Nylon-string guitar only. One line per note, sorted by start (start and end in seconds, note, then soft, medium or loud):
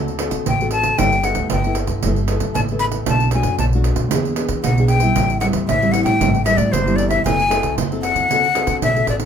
0.00 0.44 D3 medium
0.00 0.17 C4 medium
0.00 0.17 F#4 medium
0.00 0.17 A4 medium
0.19 0.44 C4 medium
0.19 0.45 F#4 medium
0.19 0.45 A4 medium
0.47 0.96 A2 medium
0.61 0.95 C4 medium
0.61 0.95 F#4 medium
0.61 0.96 A4 medium
0.99 1.48 G3 medium
0.99 1.14 B3 medium
0.99 1.14 E4 medium
0.99 1.14 A4 medium
1.25 1.60 B3 medium
1.25 1.60 E4 medium
1.25 1.60 A4 medium
1.52 2.01 D3 medium
1.66 2.00 B3 medium
1.66 2.00 E4 medium
1.66 2.00 A4 medium
2.04 2.53 G3 medium
2.04 2.19 B3 medium
2.04 2.19 E4 medium
2.04 2.20 A4 medium
2.30 2.65 B3 medium
2.30 2.65 E4 medium
2.30 2.65 A4 medium
2.56 3.05 D3 medium
2.71 3.05 B3 medium
2.71 3.05 E4 medium
2.71 3.05 A4 medium
3.09 3.58 B2 medium
3.09 3.30 A3 medium
3.09 3.31 D4 medium
3.09 3.31 F#4 medium
3.35 3.59 A3 medium
3.35 3.59 D4 medium
3.35 3.59 F#4 medium
3.61 4.10 F#2 medium
3.74 4.09 A3 medium
3.74 4.09 D4 medium
3.74 4.09 F#4 medium
4.13 4.62 E3 medium
4.13 4.35 B3 medium
4.13 4.35 D4 medium
4.13 4.35 G#4 medium
4.37 4.73 B3 medium
4.37 4.73 D4 medium
4.37 4.73 G#4 medium
4.65 5.14 B2 medium
4.79 5.00 B3 medium
4.79 5.00 D4 medium
4.79 5.00 G#4 medium
5.01 5.37 G3 medium
5.01 5.38 C4 medium
5.01 5.38 E4 medium
5.16 5.66 A2 medium
5.41 5.66 G3 medium
5.41 5.66 C4 medium
5.41 5.67 E4 medium
5.67 6.18 E3 medium
5.82 6.17 G3 medium
5.82 6.17 C4 medium
5.82 6.17 E4 medium
6.20 6.70 A2 medium
6.20 6.36 G3 medium
6.20 6.36 C4 medium
6.20 6.36 E4 medium
6.45 6.81 G3 medium
6.45 6.81 C4 medium
6.45 6.82 E4 medium
6.73 7.22 E3 medium
6.86 7.21 G3 medium
6.86 7.21 C4 medium
6.86 7.22 E4 medium
7.25 7.75 F#3 medium
7.25 7.41 C4 medium
7.25 7.41 E4 medium
7.25 7.41 A4 medium
7.50 7.75 C4 medium
7.50 7.75 E4 medium
7.50 7.76 A4 medium
7.78 8.27 F#3 medium
7.91 8.26 C4 medium
7.91 8.26 E4 medium
7.91 8.27 A4 medium
8.31 8.80 D3 medium
8.31 8.46 C4 medium
8.31 8.46 F#4 medium
8.31 8.46 A4 medium
8.56 8.91 C4 medium
8.56 8.91 F#4 medium
8.56 8.91 A4 medium
8.83 9.25 A2 medium
8.95 9.25 C4 medium
8.95 9.25 F#4 medium
8.95 9.25 A4 medium